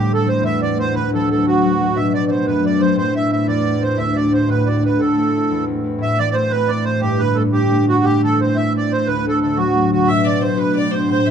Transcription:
0.00 0.47 A2 medium
0.00 1.93 A2 medium
0.00 0.15 B3 soft
0.00 1.12 D4 soft
0.00 0.34 E4 soft
0.00 0.12 G4 medium
0.00 0.92 A4 medium
0.08 0.24 E3 soft
0.08 0.24 A3 soft
0.08 0.25 C4 soft
0.14 0.28 A4 medium
0.24 0.59 E3 soft
0.24 0.60 A3 soft
0.24 0.60 C4 soft
0.24 0.44 C5 medium
0.41 0.98 E2 medium
0.41 0.61 E5 medium
0.60 0.76 E3 soft
0.60 0.77 A3 soft
0.60 0.77 C4 soft
0.60 0.78 D5 medium
0.77 0.98 E3 soft
0.77 3.13 A3 soft
0.77 2.01 C4 soft
0.77 0.95 C5 medium
0.93 2.00 D2 medium
0.93 1.11 B4 medium
1.11 1.25 E3 soft
1.11 1.26 F#3 soft
1.11 1.29 D4 soft
1.11 1.29 A4 medium
1.26 1.60 E3 soft
1.26 1.61 F#3 soft
1.26 1.63 D4 soft
1.31 1.46 A4 medium
1.43 2.00 A2 medium
1.43 1.98 F#4 medium
1.61 1.77 E3 soft
1.61 1.78 F#3 soft
1.61 1.79 D4 soft
1.78 2.00 E3 soft
1.78 2.00 F#3 soft
1.78 2.14 D4 medium
1.94 6.01 A2 medium
1.94 2.50 B2 medium
1.94 2.13 E5 medium
2.14 2.29 F#3 soft
2.14 2.30 B3 soft
2.14 2.30 D4 soft
2.14 2.25 D5 medium
2.27 2.63 F#3 soft
2.27 2.64 B3 soft
2.27 2.65 D4 medium
2.27 2.46 C5 medium
2.27 2.30 D5 medium
2.46 3.01 F#2 medium
2.46 2.65 B4 medium
2.64 2.79 F#3 soft
2.64 2.80 B3 soft
2.64 2.81 D4 medium
2.64 2.81 D5 medium
2.80 3.01 F#3 soft
2.80 3.19 B3 soft
2.80 4.14 D4 soft
2.80 2.96 C5 medium
2.95 3.52 A2 medium
2.95 3.14 C5 medium
3.13 3.29 A3 soft
3.13 3.29 C4 soft
3.13 3.30 E4 soft
3.13 3.31 E5 medium
3.29 3.64 A3 soft
3.29 3.64 C4 soft
3.29 3.65 E4 soft
3.29 3.47 E5 medium
3.47 4.03 E2 medium
3.47 3.83 D5 medium
3.64 3.80 A3 soft
3.64 3.81 C4 soft
3.64 3.81 E4 soft
3.80 4.13 A3 soft
3.80 5.17 C4 soft
3.80 5.18 E4 soft
3.80 3.99 C5 medium
3.97 5.05 D2 medium
3.97 4.17 E5 medium
4.14 4.30 A3 soft
4.14 4.31 D4 soft
4.14 4.31 F#4 soft
4.14 4.33 D5 medium
4.30 4.66 A3 soft
4.30 4.66 D4 soft
4.30 4.67 F#4 medium
4.30 4.50 C5 medium
4.48 4.98 A2 medium
4.48 4.68 B4 medium
4.66 4.83 A3 soft
4.66 4.84 D4 soft
4.66 4.84 F#4 soft
4.66 4.84 D5 medium
4.83 5.17 A3 soft
4.83 7.52 D4 soft
4.83 7.07 F#4 soft
4.83 5.01 B4 medium
4.99 5.56 A2 medium
4.99 5.65 A4 medium
5.17 5.32 A3 soft
5.17 5.35 C4 soft
5.17 5.37 E4 soft
5.32 5.66 A3 soft
5.32 5.67 C4 soft
5.38 5.67 E4 soft
5.51 6.06 E2 medium
5.67 5.83 A3 soft
5.67 5.84 C4 soft
5.67 5.84 E4 soft
5.84 6.33 A3 soft
5.84 6.50 C4 soft
5.84 6.69 E4 soft
5.98 7.08 A2 medium
5.98 10.06 A2 medium
5.98 6.19 E5 medium
6.18 7.08 E3 medium
6.18 6.29 D5 loud
6.31 6.85 A3 soft
6.31 6.52 C5 medium
6.31 6.35 D5 medium
6.50 8.38 C4 soft
6.50 6.71 B4 medium
6.68 8.57 E4 soft
6.68 6.84 D5 medium
6.85 7.37 A3 soft
6.85 7.01 C5 medium
7.01 8.10 G2 medium
7.01 7.21 G4 medium
7.19 8.10 D3 soft
7.19 7.37 B4 loud
7.35 7.70 A3 soft
7.35 7.43 A4 medium
7.53 7.87 D4 medium
7.53 7.85 G4 medium
7.71 9.75 A3 medium
7.88 10.41 D4 soft
7.88 8.05 F#4 medium
8.04 9.12 A2 medium
8.04 8.22 G4 medium
8.24 9.12 E3 soft
8.24 8.40 A4 medium
8.39 8.74 C4 medium
8.39 8.57 C5 medium
8.56 8.91 E4 medium
8.56 8.73 E5 medium
8.75 10.14 C4 soft
8.75 8.92 D5 medium
8.92 11.31 E4 soft
8.92 9.08 C5 medium
9.07 10.13 D2 medium
9.07 9.26 B4 medium
9.26 9.45 A2 soft
9.26 9.40 A4 medium
9.41 9.90 D3 medium
9.41 9.58 A4 medium
9.57 9.96 F#3 medium
9.57 9.91 F#4 medium
9.75 11.31 A3 soft
9.91 10.13 D3 medium
9.91 10.09 F#4 medium
10.07 11.31 A2 medium
10.07 11.15 B2 medium
10.07 10.26 E5 medium
10.07 10.27 E5 loud
10.25 11.15 F#3 soft
10.25 10.42 D5 medium
10.25 10.43 D5 medium
10.41 10.76 D4 soft
10.41 10.59 C5 medium
10.56 10.92 F#4 medium
10.56 10.75 B4 medium
10.56 10.78 B4 medium
10.75 11.31 D4 soft
10.75 10.93 D5 medium
10.75 10.95 D5 medium
10.91 11.31 F#4 soft
10.91 11.08 C5 medium
10.91 11.10 C5 medium
11.08 11.31 A2 medium
11.08 11.28 C5 medium
11.12 11.28 C5 medium
11.26 11.31 E3 soft
11.26 11.31 E5 medium

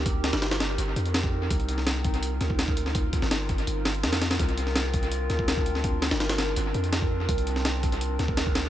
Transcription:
0.00 0.32 D2 medium
0.00 8.69 C4 medium
0.00 4.36 D#4 medium
0.00 1.47 G4 medium
0.00 8.69 A#4 medium
0.06 kick loud
0.06 closed hi-hat loud
0.24 snare loud
0.24 closed hi-hat medium
0.33 0.77 G1 medium
0.33 snare loud
0.33 closed hi-hat medium
0.42 snare loud
0.42 closed hi-hat medium
0.51 snare loud
0.51 closed hi-hat medium
0.60 snare loud
0.60 closed hi-hat medium
0.78 0.94 G1 loud
0.78 closed hi-hat loud
0.96 1.49 F2 loud
0.96 closed hi-hat medium
1.05 closed hi-hat soft
1.14 snare loud
1.14 closed hi-hat loud
1.23 kick loud
1.50 2.39 C2 loud
1.50 8.69 F4 medium
1.50 kick loud
1.50 closed hi-hat medium
1.60 closed hi-hat soft
1.69 closed hi-hat medium
1.78 snare soft
1.87 snare loud
1.87 closed hi-hat medium
2.04 kick loud
2.04 closed hi-hat medium
2.14 closed hi-hat soft
2.23 closed hi-hat medium
2.41 3.21 D2 medium
2.41 snare soft
2.41 closed hi-hat medium
2.50 kick medium
2.59 snare loud
2.59 closed hi-hat medium
2.68 kick loud
2.77 closed hi-hat medium
2.86 snare soft
2.95 kick loud
2.95 closed hi-hat medium
3.13 kick loud
3.13 closed hi-hat medium
3.22 3.67 G1 loud
3.22 snare medium
3.31 snare loud
3.31 closed hi-hat loud
3.49 kick loud
3.49 closed hi-hat medium
3.58 closed hi-hat soft
3.67 4.05 G1 loud
3.67 closed hi-hat medium
3.85 snare loud
3.85 closed hi-hat medium
3.94 closed hi-hat soft
4.03 4.38 F2 medium
4.03 snare loud
4.03 closed hi-hat medium
4.12 snare loud
4.12 closed hi-hat medium
4.21 snare loud
4.21 closed hi-hat medium
4.31 snare loud
4.31 closed hi-hat medium
4.39 5.28 C2 loud
4.39 8.69 D4 medium
4.39 kick loud
4.39 closed hi-hat medium
4.49 closed hi-hat soft
4.57 closed hi-hat medium
4.67 snare soft
4.75 snare loud
4.75 closed hi-hat loud
4.94 kick loud
4.94 closed hi-hat medium
5.03 closed hi-hat soft
5.11 closed hi-hat medium
5.30 6.10 D2 medium
5.30 snare soft
5.30 closed hi-hat medium
5.39 kick medium
5.48 snare loud
5.48 closed hi-hat medium
5.57 kick loud
5.66 closed hi-hat medium
5.75 snare soft
5.84 kick loud
5.84 closed hi-hat medium
6.02 snare loud
6.02 closed hi-hat medium
6.11 6.56 G1 medium
6.11 snare loud
6.11 closed hi-hat medium
6.20 snare loud
6.20 closed hi-hat medium
6.29 snare loud
6.29 closed hi-hat medium
6.38 snare loud
6.38 closed hi-hat medium
6.56 6.73 G1 loud
6.56 closed hi-hat medium
6.74 7.27 F2 loud
6.74 closed hi-hat medium
6.84 closed hi-hat soft
6.93 snare loud
6.93 closed hi-hat medium
7.02 kick loud
7.29 8.18 C2 loud
7.29 kick loud
7.29 closed hi-hat medium
7.38 closed hi-hat soft
7.47 closed hi-hat medium
7.56 snare soft
7.65 snare loud
7.65 closed hi-hat loud
7.83 kick loud
7.83 closed hi-hat medium
7.92 closed hi-hat soft
8.01 closed hi-hat loud
8.19 8.69 D2 medium
8.19 snare soft
8.19 closed hi-hat medium
8.28 kick loud
8.37 snare loud
8.37 closed hi-hat medium
8.46 kick loud
8.55 snare loud
8.55 closed hi-hat medium

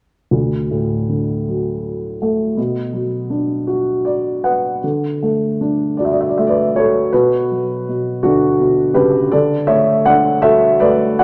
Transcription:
0.31 2.53 D2 soft
0.71 2.17 A2 soft
1.09 2.53 D3 soft
1.48 2.55 F#3 soft
2.22 2.57 A3 soft
2.57 4.79 B2 soft
2.93 4.40 F#3 soft
3.30 4.79 D4 soft
3.67 4.79 F#4 soft
4.05 4.41 D5 soft
4.44 4.82 B4 soft
4.44 4.80 F#5 medium
4.84 7.08 D3 soft
5.23 6.37 A3 soft
5.61 7.08 D4 soft
5.97 6.74 F#4 soft
5.97 6.06 D5 soft
6.05 6.14 E5 soft
6.11 6.21 D5 soft
6.21 6.29 E5 soft
6.28 6.37 D5 soft
6.38 7.10 A3 soft
6.38 6.46 E5 soft
6.47 6.74 B4 soft
6.47 6.75 D5 medium
6.75 7.11 F#4 soft
6.75 7.11 A4 soft
6.75 7.14 C#5 medium
7.12 7.87 B2 soft
7.12 8.20 F#4 soft
7.12 8.19 B4 medium
7.51 8.93 F#3 soft
7.89 8.58 B2 soft
8.23 9.30 D3 soft
8.23 8.92 D4 soft
8.23 8.92 F#4 medium
8.60 9.30 B2 soft
8.94 9.32 C#3 soft
8.94 9.29 G4 medium
8.94 9.29 B4 medium
9.32 11.24 D3 medium
9.32 9.66 A4 medium
9.32 9.70 D5 medium
9.67 10.80 A3 soft
9.67 10.02 C#5 medium
9.67 10.06 E5 medium
10.05 11.24 D4 soft
10.05 10.41 D5 medium
10.05 10.44 F#5 medium
10.42 11.18 F#4 soft
10.42 10.78 A4 medium
10.42 10.82 E5 medium
10.80 11.24 A3 soft
10.80 11.16 B4 medium
10.80 11.17 D5 medium
11.19 11.24 F#4 soft
11.19 11.24 D5 medium
11.19 11.24 F#5 medium

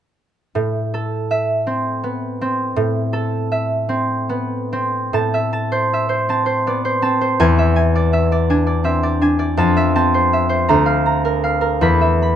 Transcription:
0.55 2.75 A2 medium
0.94 3.12 A4 soft
1.31 3.50 E5 soft
1.67 2.40 C4 soft
2.04 2.66 B3 soft
2.41 3.88 C4 soft
2.76 5.12 A2 medium
3.13 7.03 A4 medium
3.52 5.33 E5 soft
3.89 4.71 C4 soft
4.29 5.01 B3 soft
4.73 6.28 C4 soft
5.13 7.42 A2 medium
5.13 5.52 A5 medium
5.34 5.92 E5 soft
5.53 6.28 A5 medium
5.72 6.08 C5 soft
5.93 7.57 E5 soft
6.09 6.45 C5 soft
6.29 7.01 C4 soft
6.29 7.01 A5 soft
6.46 6.84 C5 soft
6.67 7.28 B3 soft
6.67 6.97 D5 soft
6.85 7.20 C5 medium
7.02 7.42 C4 soft
7.02 7.42 A5 medium
7.21 7.42 C5 medium
7.40 9.61 E2 medium
7.40 7.75 G#5 medium
7.59 8.12 E5 medium
7.76 8.49 G#5 medium
7.95 8.31 D5 medium
8.13 8.83 E5 soft
8.32 8.65 D5 medium
8.50 9.20 D4 soft
8.50 9.21 G#5 soft
8.67 9.02 D5 soft
8.84 9.46 C4 soft
8.84 9.15 E5 soft
9.03 9.38 D5 medium
9.21 9.60 D4 soft
9.21 9.61 G#5 medium
9.39 9.60 D5 medium
9.57 10.72 F2 medium
9.57 9.94 A5 medium
9.77 10.32 E5 medium
9.95 10.73 C4 soft
9.95 10.73 A5 medium
10.14 10.48 C5 soft
10.33 10.73 E5 soft
10.49 10.72 C5 soft
10.69 11.87 D2 medium
10.69 11.05 A#5 medium
10.86 11.42 F5 soft
11.06 11.86 A#5 medium
11.25 11.60 A#4 soft
11.44 11.86 F5 soft
11.61 11.85 A#4 medium
11.81 12.36 E2 medium
11.81 12.21 B5 medium
12.01 12.36 E5 soft
12.22 12.36 B5 soft

